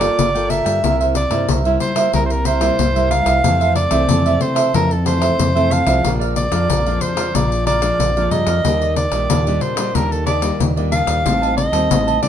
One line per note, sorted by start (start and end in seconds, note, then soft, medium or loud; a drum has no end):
0.00 0.16 G3 soft
0.00 0.29 A#3 medium
0.00 0.29 F4 medium
0.00 0.29 A4 medium
0.00 0.33 A#4 medium
0.00 0.51 D5 medium
0.00 0.33 D5 medium
0.00 0.33 G5 medium
0.00 pandeiro medium
0.19 0.60 G1 medium
0.19 0.81 D3 soft
0.19 pandeiro medium
0.35 0.79 A#3 medium
0.35 0.79 F4 medium
0.35 0.79 A4 medium
0.35 0.49 A#4 medium
0.35 0.50 D5 medium
0.35 0.50 G5 medium
0.35 pandeiro soft
0.49 0.65 F4 soft
0.49 0.65 A#4 soft
0.49 0.64 D5 soft
0.49 0.99 E5 medium
0.49 0.63 G5 medium
0.49 pandeiro medium
0.64 0.80 G2 medium
0.64 0.82 A#4 soft
0.64 0.82 D5 medium
0.64 0.81 G5 medium
0.64 pandeiro medium
0.83 1.25 C2 medium
0.83 1.45 C3 soft
0.83 1.14 G3 soft
0.83 1.14 A#3 soft
0.83 0.98 E4 soft
0.83 1.15 E4 medium
0.83 0.99 A#4 soft
0.83 0.99 C5 soft
0.83 0.99 E5 medium
0.83 pandeiro medium
1.00 1.15 A#4 medium
1.00 1.15 C5 medium
1.00 1.15 E5 medium
1.00 pandeiro soft
1.15 1.52 D5 medium
1.15 muted cavaquinho stroke soft
1.15 pandeiro medium
1.31 1.45 G2 medium
1.31 1.59 G3 medium
1.31 1.59 A#3 medium
1.31 1.60 E4 medium
1.31 1.48 A#4 soft
1.31 1.47 C5 soft
1.31 1.47 E5 medium
1.31 pandeiro medium
1.49 1.77 C2 medium
1.49 2.11 G2 soft
1.49 1.64 E4 soft
1.49 1.64 A#4 soft
1.49 1.64 C5 medium
1.49 1.64 E5 medium
1.49 pandeiro medium
1.65 1.93 G3 medium
1.65 1.93 A#3 medium
1.65 1.93 E4 medium
1.65 1.96 A#4 medium
1.65 1.95 C5 medium
1.65 1.95 E5 medium
1.65 pandeiro soft
1.80 2.11 C5 medium
1.80 pandeiro soft
1.96 2.08 G3 medium
1.96 2.08 A#3 medium
1.96 2.08 E4 medium
1.96 2.13 A#4 soft
1.96 2.12 C5 medium
1.96 2.12 E5 medium
1.96 pandeiro medium
2.13 2.69 C2 medium
2.13 2.76 C3 soft
2.13 2.44 G3 medium
2.13 2.44 A#3 medium
2.13 2.29 E4 soft
2.13 2.45 E4 medium
2.13 2.25 A#4 medium
2.13 2.29 A#4 soft
2.13 2.29 C5 soft
2.13 2.30 E5 soft
2.13 pandeiro medium
2.26 2.32 C5 medium
2.30 2.47 A#4 medium
2.30 muted cavaquinho stroke soft
2.30 pandeiro soft
2.45 2.61 E4 medium
2.45 2.61 A#4 medium
2.45 3.10 C5 medium
2.45 2.61 C5 medium
2.45 2.60 E5 medium
2.45 pandeiro medium
2.61 2.89 G3 medium
2.61 2.89 A#3 medium
2.61 2.89 E4 medium
2.61 2.94 A#4 soft
2.61 2.94 C5 medium
2.61 2.93 E5 medium
2.61 pandeiro medium
2.79 3.20 C2 medium
2.79 3.41 G2 medium
2.79 pandeiro medium
2.96 3.39 G3 medium
2.96 3.39 A#3 medium
2.96 3.39 E4 medium
2.96 3.10 A#4 soft
2.96 3.11 C5 medium
2.96 3.10 E5 medium
2.96 pandeiro soft
3.10 3.26 E4 soft
3.10 3.26 A#4 soft
3.10 3.26 C5 soft
3.10 3.25 E5 soft
3.10 3.72 F5 loud
3.10 pandeiro medium
3.26 3.40 C2 medium
3.26 3.43 A#4 medium
3.26 3.42 C5 medium
3.26 3.42 E5 medium
3.26 pandeiro medium
3.44 4.06 F2 soft
3.44 3.86 F2 medium
3.44 3.74 E3 medium
3.44 3.75 A3 medium
3.44 3.75 C4 medium
3.44 3.59 F4 soft
3.44 3.59 A4 soft
3.44 3.59 C5 soft
3.44 3.59 E5 medium
3.44 pandeiro medium
3.60 3.75 A4 soft
3.60 3.75 C5 medium
3.60 3.75 E5 medium
3.60 pandeiro soft
3.75 4.43 D5 medium
3.75 muted cavaquinho stroke soft
3.75 pandeiro medium
3.91 4.06 C2 medium
3.91 4.35 E3 medium
3.91 4.35 A3 medium
3.91 4.36 C4 medium
3.91 4.08 A4 soft
3.91 4.07 C5 medium
3.91 4.07 E5 medium
3.91 pandeiro medium
4.09 4.37 F2 medium
4.09 4.71 C3 soft
4.09 4.24 F4 soft
4.09 4.24 A4 soft
4.09 4.25 C5 soft
4.09 4.25 E5 medium
4.09 pandeiro medium
4.26 4.56 A4 soft
4.26 4.55 C5 medium
4.26 4.54 E5 medium
4.26 pandeiro soft
4.40 4.68 E3 medium
4.40 4.69 A3 soft
4.40 4.69 C4 medium
4.40 4.74 C5 medium
4.40 pandeiro medium
4.55 4.72 A4 medium
4.55 4.72 C5 medium
4.55 4.72 E5 medium
4.55 pandeiro medium
4.73 5.29 F2 medium
4.73 5.36 F2 medium
4.73 4.93 E3 medium
4.73 4.93 A3 medium
4.73 4.94 C4 medium
4.73 4.89 F4 soft
4.73 4.89 A4 medium
4.73 4.94 A#4 medium
4.73 4.89 C5 soft
4.73 4.89 E5 soft
4.73 pandeiro medium
4.91 5.06 A4 medium
4.91 muted cavaquinho stroke soft
4.91 pandeiro soft
5.05 5.50 E3 soft
5.05 5.50 A3 medium
5.05 5.50 C4 medium
5.05 5.21 F4 medium
5.05 5.21 A4 medium
5.05 5.73 C5 medium
5.05 5.21 C5 medium
5.05 5.20 E5 medium
5.05 pandeiro medium
5.21 5.54 A4 medium
5.21 5.54 C5 medium
5.21 5.53 E5 medium
5.21 pandeiro medium
5.39 5.81 F2 medium
5.39 6.01 C3 medium
5.39 pandeiro medium
5.55 5.83 E3 medium
5.55 5.83 A3 medium
5.55 5.83 C4 medium
5.55 5.70 A4 soft
5.55 5.70 C5 medium
5.55 5.70 E5 medium
5.55 pandeiro soft
5.71 5.86 F4 soft
5.71 5.86 A4 soft
5.71 5.86 C5 soft
5.71 5.85 E5 soft
5.71 6.10 F5 medium
5.71 pandeiro medium
5.86 6.01 C2 medium
5.86 6.47 F3 soft
5.86 6.47 G#3 medium
5.86 6.47 D4 medium
5.86 6.03 A4 soft
5.86 6.02 C5 medium
5.86 6.02 E5 medium
5.86 pandeiro medium
6.03 6.46 A#1 medium
6.03 6.66 A#2 soft
6.03 6.19 G#4 soft
6.03 6.19 A#4 soft
6.03 6.19 D5 soft
6.03 6.19 F5 soft
6.03 pandeiro medium
6.20 6.35 A#4 soft
6.20 6.35 D5 medium
6.20 6.35 F5 medium
6.20 pandeiro soft
6.36 7.03 D5 medium
6.36 muted cavaquinho stroke soft
6.36 pandeiro medium
6.51 6.66 F2 medium
6.51 6.80 F3 medium
6.51 6.80 G#3 medium
6.51 6.80 D4 medium
6.51 6.68 A#4 soft
6.51 6.67 D5 medium
6.51 6.68 F5 medium
6.51 pandeiro medium
6.68 6.97 A#1 medium
6.68 7.31 F2 soft
6.68 6.84 G#4 soft
6.68 6.84 A#4 soft
6.68 6.85 D5 medium
6.68 6.85 F5 soft
6.68 pandeiro medium
6.86 7.13 F3 medium
6.86 7.14 G#3 medium
6.86 7.14 D4 medium
6.86 7.17 A#4 soft
6.86 7.15 D5 medium
6.86 7.16 F5 medium
6.86 pandeiro soft
7.01 7.36 C5 medium
7.01 pandeiro medium
7.16 7.29 F3 medium
7.16 7.29 G#3 medium
7.16 7.29 D4 medium
7.16 7.33 A#4 soft
7.16 7.32 D5 medium
7.16 7.33 F5 medium
7.16 pandeiro medium
7.34 7.90 A#1 medium
7.34 7.97 A#2 soft
7.34 7.78 F3 medium
7.34 7.79 G#3 medium
7.34 7.79 D4 medium
7.34 7.49 G#4 soft
7.34 7.50 A#4 soft
7.34 7.66 D5 medium
7.34 7.50 D5 medium
7.34 7.50 F5 medium
7.34 pandeiro medium
7.51 muted cavaquinho stroke soft
7.51 pandeiro soft
7.65 7.81 G#4 medium
7.65 7.82 A#4 medium
7.65 8.32 D5 medium
7.65 7.80 D5 medium
7.65 7.81 F5 medium
7.65 pandeiro medium
7.81 8.10 F3 medium
7.81 8.10 G#3 medium
7.81 8.10 D4 medium
7.81 8.14 A#4 medium
7.81 8.13 D5 medium
7.81 8.14 F5 medium
7.81 pandeiro medium
7.99 8.27 A#1 medium
7.99 8.62 F2 soft
7.99 pandeiro medium
8.16 8.60 F3 medium
8.16 8.60 G#3 medium
8.16 8.60 D4 medium
8.16 8.30 A#4 soft
8.16 8.31 D5 medium
8.16 8.31 F5 medium
8.16 pandeiro soft
8.31 8.46 G2 medium
8.31 8.46 G#4 soft
8.31 8.47 A#4 soft
8.31 8.46 D5 soft
8.31 8.96 D#5 medium
8.31 8.46 F5 soft
8.31 pandeiro medium
8.47 8.62 F2 medium
8.47 8.63 A#4 medium
8.47 8.63 D5 medium
8.47 8.63 F5 medium
8.47 pandeiro medium
8.65 9.06 D#2 medium
8.65 9.27 D#3 soft
8.65 8.96 G3 medium
8.65 8.96 A#3 soft
8.65 8.80 D4 soft
8.65 8.80 G4 medium
8.65 8.80 D5 medium
8.65 8.80 D#5 medium
8.65 pandeiro medium
8.81 8.95 G4 soft
8.81 8.96 D5 medium
8.81 8.95 D#5 medium
8.81 pandeiro soft
8.96 9.63 D5 medium
8.96 muted cavaquinho stroke soft
8.96 pandeiro medium
9.11 9.27 A#1 medium
9.11 9.40 G3 medium
9.11 9.41 A#3 medium
9.11 9.41 D4 medium
9.11 9.29 G4 soft
9.11 9.27 D5 medium
9.11 9.28 D#5 medium
9.11 pandeiro medium
9.29 9.58 D#2 medium
9.29 9.92 A#2 soft
9.29 9.45 D4 soft
9.29 9.45 G4 soft
9.29 9.45 D5 medium
9.29 9.45 D#5 soft
9.29 pandeiro medium
9.46 9.74 G3 medium
9.46 9.74 A#3 medium
9.46 9.75 D4 medium
9.46 9.77 G4 medium
9.46 9.75 D5 medium
9.46 9.76 D#5 medium
9.46 pandeiro soft
9.61 9.96 C5 medium
9.61 pandeiro soft
9.76 9.89 G3 medium
9.76 9.90 A#3 medium
9.76 9.90 D4 medium
9.76 9.94 G4 soft
9.76 9.93 D5 medium
9.76 9.93 D#5 medium
9.76 pandeiro medium
9.94 10.51 D#2 medium
9.94 10.57 D#3 medium
9.94 10.26 G3 soft
9.94 10.26 A#3 medium
9.94 10.10 D4 soft
9.94 10.26 D4 medium
9.94 10.10 G4 soft
9.94 10.13 A#4 medium
9.94 10.11 D5 soft
9.94 10.10 D#5 soft
9.94 pandeiro medium
10.11 10.25 A4 medium
10.11 muted cavaquinho stroke soft
10.11 pandeiro soft
10.26 10.42 D4 medium
10.26 10.42 G4 medium
10.26 10.62 D5 medium
10.26 10.40 D5 medium
10.26 10.41 D#5 medium
10.26 pandeiro medium
10.42 10.71 G3 medium
10.42 10.71 A#3 medium
10.42 10.71 D4 medium
10.42 10.75 G4 medium
10.42 10.74 D5 medium
10.42 10.75 D#5 medium
10.42 pandeiro medium
10.60 11.02 D#2 medium
10.60 11.22 A#2 soft
10.60 pandeiro medium
10.76 11.21 G3 medium
10.76 11.21 A#3 medium
10.76 11.21 D4 medium
10.76 10.91 G4 soft
10.76 10.92 D5 medium
10.76 10.92 D#5 medium
10.76 pandeiro soft
10.91 11.07 D4 soft
10.91 11.07 G4 soft
10.91 11.05 D5 soft
10.91 11.06 D#5 soft
10.91 11.54 F5 medium
10.91 pandeiro medium
11.07 11.22 D#2 medium
11.07 11.24 G4 soft
11.07 11.23 D5 medium
11.07 11.23 D#5 medium
11.07 pandeiro medium
11.25 11.67 A1 medium
11.25 11.88 A2 soft
11.25 11.69 G3 soft
11.25 11.69 C4 medium
11.25 11.70 D#4 medium
11.25 11.40 G4 soft
11.25 11.41 C5 soft
11.25 11.41 D#5 soft
11.25 11.40 A5 medium
11.25 pandeiro medium
11.42 11.56 C5 medium
11.42 11.56 D#5 medium
11.42 11.56 A5 medium
11.42 pandeiro soft
11.57 12.19 D#5 medium
11.57 muted cavaquinho stroke soft
11.57 pandeiro medium
11.72 11.87 D#2 medium
11.72 12.17 G3 medium
11.72 12.18 C4 medium
11.72 12.18 D#4 medium
11.72 11.89 C5 soft
11.72 11.89 D#5 medium
11.72 11.88 A5 medium
11.72 pandeiro medium
11.90 12.18 A1 medium
11.90 12.28 A2 soft
11.90 12.06 G4 soft
11.90 12.06 C5 soft
11.90 12.06 D#5 soft
11.90 12.06 A5 medium
11.90 pandeiro medium
12.07 12.28 C5 soft
12.07 12.28 D#5 medium
12.07 12.28 A5 medium
12.07 pandeiro soft
12.22 12.28 G3 soft
12.22 12.28 C4 soft
12.22 12.28 D#4 medium
12.22 12.28 D5 medium
12.22 pandeiro medium